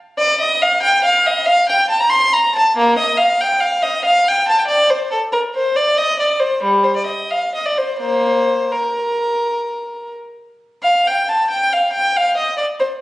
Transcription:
0.19 0.39 D5 loud
0.41 0.62 D#5 loud
0.62 0.83 F5 loud
0.83 1.04 G5 loud
1.04 1.25 F5 loud
1.27 1.48 D#5 loud
1.46 1.68 F5 loud
1.69 1.90 G5 medium
1.90 2.00 A5 medium
2.00 2.11 A#5 loud
2.10 2.32 C6 loud
2.33 2.55 A#5 loud
2.56 2.76 A5 loud
2.77 2.97 A#3 loud
2.99 3.19 D#5 loud
3.17 3.39 F5 loud
3.40 3.62 G5 loud
3.61 3.83 F5 medium
3.83 4.04 D#5 loud
4.05 4.26 F5 loud
4.28 4.48 G5 loud
4.48 4.58 A5 loud
4.59 4.69 G5 medium
4.68 4.89 D5 loud
4.90 5.12 C5 medium
5.11 5.19 A4 medium
5.32 5.40 A#4 medium
5.55 5.76 C5 medium
5.76 5.98 D5 medium
5.97 6.19 D#5 medium
6.20 6.41 D5 medium
6.40 6.62 C5 medium
6.63 6.85 G3 medium
6.84 6.96 C5 medium
6.96 7.07 D5 medium
7.07 7.30 D#5 medium
7.31 7.53 F5 medium
7.55 7.65 D#5 medium
7.66 7.77 D5 medium
7.78 7.98 C5 medium
7.99 8.66 A#3 medium
7.99 8.69 C5 medium
8.72 10.12 A#4 medium
10.83 11.04 F5 medium
11.07 11.29 G5 medium
11.29 11.50 A5 medium
11.50 11.72 G5 medium
11.73 11.94 F5 medium
11.93 12.15 G5 medium
12.17 12.38 F5 medium
12.37 12.58 D#5 medium
12.57 12.65 D5 medium
12.80 12.88 C5 medium

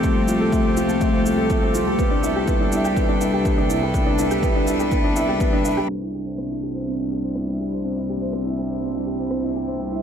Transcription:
0.00 1.97 C2 medium
0.00 1.99 F3 medium
0.00 0.04 A3 medium
0.00 0.15 A3 medium
0.00 0.15 C4 medium
0.00 1.99 C4 medium
0.00 0.28 F4 medium
0.00 3.55 G4 medium
0.00 0.40 A4 medium
0.00 7.23 A4 medium
0.00 kick loud
0.00 shaker soft
0.15 0.27 C4 medium
0.28 0.35 F4 medium
0.28 shaker medium
0.40 0.52 A4 medium
0.52 0.64 A3 medium
0.52 kick medium
0.52 shaker soft
0.65 0.72 C4 medium
0.77 0.89 F4 medium
0.77 shaker medium
0.89 1.01 A4 medium
0.89 shaker soft
1.01 1.13 A3 medium
1.01 kick medium
1.01 shaker soft
1.13 1.25 C4 medium
1.25 1.37 F4 medium
1.25 shaker medium
1.38 1.45 A4 medium
1.50 1.62 A3 medium
1.50 kick loud
1.50 shaker soft
1.62 1.74 C4 medium
1.74 1.82 F4 medium
1.74 shaker medium
1.87 1.98 A4 medium
1.99 5.87 C2 medium
1.99 10.02 G3 medium
1.99 2.11 B3 medium
1.99 kick loud
1.99 shaker soft
2.11 2.18 D4 medium
2.23 2.35 E4 medium
2.23 shaker medium
2.36 2.47 G4 medium
2.47 2.60 B3 medium
2.47 10.02 D4 medium
2.47 kick medium
2.47 shaker soft
2.60 2.72 D4 medium
2.72 2.84 E4 medium
2.72 shaker medium
2.85 2.91 G4 loud
2.85 shaker soft
2.97 3.08 B3 medium
2.97 kick medium
2.97 shaker soft
3.09 3.20 D4 medium
3.21 3.28 E4 medium
3.21 shaker medium
3.33 3.45 G4 medium
3.45 3.57 B3 medium
3.45 kick loud
3.45 shaker soft
3.58 3.65 D4 medium
3.70 3.81 E4 medium
3.70 shaker medium
3.75 6.82 B4 medium
3.82 3.94 G4 medium
3.94 4.06 B3 medium
3.94 kick loud
3.94 shaker soft
4.06 4.18 D4 medium
4.19 4.30 E4 medium
4.19 shaker medium
4.31 4.38 G4 loud
4.31 shaker soft
4.43 4.55 B3 medium
4.43 kick medium
4.43 shaker soft
4.55 4.67 D4 medium
4.67 4.74 E4 medium
4.67 shaker medium
4.80 4.91 G4 medium
4.80 shaker soft
4.92 5.03 B3 medium
4.92 kick loud
4.92 shaker soft
5.04 5.11 D4 medium
5.16 5.28 E4 medium
5.16 shaker medium
5.28 5.40 G4 medium
5.40 5.52 B3 medium
5.40 kick loud
5.40 shaker soft
5.53 5.64 D4 medium
5.65 5.77 E4 medium
5.65 shaker medium
5.77 5.84 G4 loud
5.89 10.02 C2 medium
5.89 10.02 C3 medium
5.89 6.01 C4 medium
6.02 6.09 E4 medium
6.14 6.25 G4 medium
6.26 6.38 C5 medium
6.38 6.50 C4 medium
6.38 cross-stick medium
6.49 10.02 E4 medium
6.49 6.62 E4 medium
6.63 6.74 G4 medium
6.75 6.82 C5 medium
6.87 6.99 C4 medium
7.00 7.11 E4 medium
7.12 7.18 G4 medium
7.24 7.35 C5 medium
7.36 7.47 C4 medium
7.36 cross-stick medium
7.48 7.55 E4 medium
7.60 7.72 G4 medium
7.73 7.84 C5 medium
7.85 7.96 C4 medium
7.97 8.08 E4 medium
8.09 8.21 G4 medium
8.21 8.28 C5 medium
8.33 8.45 C4 medium
8.33 cross-stick medium
8.46 8.57 E4 medium
8.58 8.65 G4 medium
8.70 8.82 C5 medium
8.82 8.94 C4 medium
8.95 9.01 E4 medium
9.07 9.18 G4 medium
9.19 9.30 C5 medium
9.31 9.43 C4 medium
9.31 cross-stick medium
9.43 9.55 E4 medium
9.55 9.67 G4 medium
9.68 9.74 C5 medium
9.80 9.91 C4 medium
9.92 10.02 E4 medium

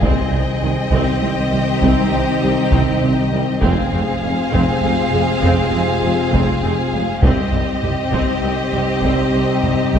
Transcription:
0.00 0.10 C2 medium
0.00 0.14 C2 medium
0.00 3.58 C3 medium
0.00 0.88 C3 medium
0.00 3.58 D#3 medium
0.00 3.58 C4 medium
0.00 3.59 C4 medium
0.00 0.31 C4 medium
0.00 3.58 D#4 medium
0.00 0.92 G#4 medium
0.00 3.59 C5 medium
0.00 3.59 D#5 medium
0.00 3.63 D#5 medium
0.00 taiko medium
0.04 3.63 G5 medium
0.32 0.44 C2 medium
0.32 0.40 C2 soft
0.32 0.42 C4 medium
0.62 0.70 C2 medium
0.62 0.74 C2 medium
0.62 0.72 D#3 medium
0.91 0.99 C2 medium
0.91 1.03 C2 medium
0.91 1.00 C2 medium
0.91 1.20 C4 medium
0.91 3.62 G4 medium
0.91 taiko medium
1.21 1.29 C2 medium
1.21 1.33 C2 soft
1.21 1.30 C2 soft
1.21 1.29 C4 medium
1.51 1.64 C2 medium
1.51 1.60 C2 medium
1.51 1.59 G3 medium
1.81 1.93 C2 medium
1.81 1.90 C2 medium
1.81 1.91 C2 medium
1.81 2.10 C4 medium
1.81 taiko medium
2.11 2.19 C2 soft
2.11 2.24 C2 soft
2.11 2.21 C2 medium
2.11 2.21 C4 soft
2.42 2.50 C2 medium
2.42 2.54 C2 medium
2.42 2.50 C2 medium
2.42 2.51 G3 medium
2.72 2.80 C2 medium
2.72 2.81 C2 medium
2.72 2.85 C2 medium
2.72 3.00 C4 medium
2.72 taiko medium
3.02 3.14 C2 medium
3.02 3.11 C2 soft
3.02 3.11 C2 medium
3.02 3.11 C4 medium
3.32 3.40 C2 medium
3.32 3.44 C2 medium
3.32 3.40 C2 soft
3.32 3.40 G3 medium
3.59 3.74 F1 medium
3.59 3.71 F1 medium
3.59 3.71 F2 medium
3.59 7.05 C3 medium
3.59 7.05 G#3 medium
3.59 7.04 C4 medium
3.59 7.19 G#4 medium
3.59 7.23 F5 medium
3.59 taiko medium
3.63 3.91 C4 medium
3.63 7.19 C4 medium
3.63 7.04 F4 medium
3.63 7.23 G#4 medium
3.63 7.19 C5 medium
3.63 7.23 F5 medium
3.92 4.01 F1 medium
3.92 4.05 F1 medium
3.92 4.00 F2 medium
3.92 4.01 C4 medium
4.21 4.35 F1 medium
4.21 4.31 F1 medium
4.21 4.30 F2 soft
4.21 4.29 G#3 medium
4.52 4.65 F1 medium
4.52 4.61 F1 medium
4.52 4.61 F2 medium
4.52 4.80 C4 medium
4.52 taiko medium
4.82 4.94 F1 soft
4.82 4.91 F1 medium
4.82 4.91 F2 medium
4.82 4.91 C4 medium
5.12 5.20 F1 medium
5.12 5.25 F1 medium
5.12 5.21 F2 medium
5.12 5.21 G#3 medium
5.42 5.50 F1 medium
5.42 5.55 F1 medium
5.42 5.51 F2 medium
5.42 5.71 C4 medium
5.42 taiko medium
5.73 5.81 F1 medium
5.73 5.85 F1 soft
5.73 5.82 F2 soft
5.73 5.81 C4 soft
6.02 6.14 F1 medium
6.02 6.11 F1 soft
6.02 6.12 F2 soft
6.02 6.12 G#3 medium
6.32 6.40 F1 medium
6.32 6.45 F1 medium
6.32 6.41 F2 medium
6.32 6.60 C4 medium
6.32 taiko medium
6.62 6.74 F1 soft
6.62 6.70 F1 soft
6.62 6.72 F2 medium
6.62 6.71 C4 medium
6.92 7.04 F1 soft
6.92 7.01 F1 soft
6.92 7.01 F2 medium
6.92 7.02 G#3 medium
7.21 7.34 C2 medium
7.21 7.30 C2 medium
7.21 7.31 C2 medium
7.21 9.99 C3 medium
7.21 9.99 G3 medium
7.21 9.99 C4 medium
7.21 7.51 C4 medium
7.21 9.99 C4 medium
7.21 9.99 D#4 medium
7.21 9.99 G4 medium
7.21 9.99 C5 medium
7.21 9.99 D#5 medium
7.21 taiko medium
7.52 7.61 C2 soft
7.52 7.65 C2 soft
7.52 7.61 C2 medium
7.52 7.61 C4 soft
7.52 taiko low-mid soft
7.83 7.91 C2 soft
7.83 7.95 C2 soft
7.83 7.91 C2 soft
7.83 7.91 G3 soft
7.83 taiko low-mid medium
8.11 8.19 C2 medium
8.11 8.25 C2 medium
8.11 8.21 C2 medium
8.11 8.41 C4 medium
8.11 taiko medium
8.42 8.50 C2 soft
8.42 8.55 C2 soft
8.42 8.51 C2 medium
8.42 8.52 C4 medium
8.73 8.81 C2 medium
8.73 8.85 C2 soft
8.73 8.81 C2 soft
8.73 8.82 G3 medium
8.73 taiko low-mid soft
9.02 9.10 C2 medium
9.02 9.16 C2 medium
9.02 9.12 C2 medium
9.02 9.32 C4 medium
9.02 taiko medium
9.33 9.41 C2 soft
9.33 9.46 C2 soft
9.33 9.42 C2 soft
9.33 9.42 C4 soft
9.63 9.71 C2 soft
9.63 9.76 C2 medium
9.63 9.73 C2 soft
9.63 9.72 G3 soft
9.63 taiko low-mid medium
9.94 9.99 C2 medium
9.94 9.99 C4 soft
9.94 taiko medium

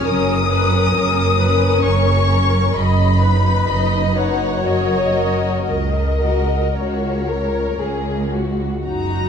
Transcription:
0.05 0.85 F#1 medium
0.05 0.85 F#2 medium
0.05 0.48 C#4 soft
0.05 0.48 A#4 soft
0.05 0.51 A#4 medium
0.05 1.81 D#6 medium
0.50 1.38 C#4 soft
0.50 1.37 A#4 soft
0.50 0.94 B4 medium
0.95 1.74 F#1 medium
0.95 1.74 F#2 medium
0.95 1.39 A#4 medium
1.39 2.27 C#4 soft
1.39 2.27 A#4 soft
1.39 1.84 B4 medium
1.84 2.64 F#1 medium
1.84 2.64 F#2 medium
1.84 2.75 C#5 medium
1.84 2.75 C#6 medium
2.28 2.73 C#4 soft
2.28 2.73 A#4 soft
2.74 3.57 F#1 medium
2.74 3.57 F#2 medium
2.74 3.20 D#5 soft
2.74 4.17 B5 medium
3.20 4.14 D#4 soft
3.20 4.14 B4 soft
3.20 3.68 B4 soft
3.67 4.53 F#1 soft
3.67 4.53 F#2 soft
3.67 4.16 D#5 medium
4.15 4.63 D#4 soft
4.15 4.63 B4 soft
4.15 5.68 C#5 medium
4.15 4.64 F#5 medium
4.63 5.55 F#1 soft
4.63 5.55 F#2 soft
4.63 5.12 F#4 soft
4.63 5.12 A#4 soft
4.63 5.66 D#5 medium
5.13 5.66 F#4 soft
5.13 5.66 A#4 soft
5.67 6.63 C#2 soft
5.67 8.30 A#4 soft
5.67 6.74 D#5 soft
6.21 6.64 F#4 soft
6.21 6.64 A#4 soft
6.75 7.69 C#2 soft
6.75 7.25 F#4 soft
6.75 8.34 C#5 soft
7.29 7.81 A#4 soft
7.80 8.73 C#2 soft
7.80 8.74 C#2 soft
7.80 8.33 G#4 soft
8.34 8.86 F#4 soft
8.86 9.29 F#1 soft
8.86 9.29 F#2 medium
8.86 9.29 D#4 soft
8.86 9.29 F#4 soft
8.86 9.29 A#5 medium

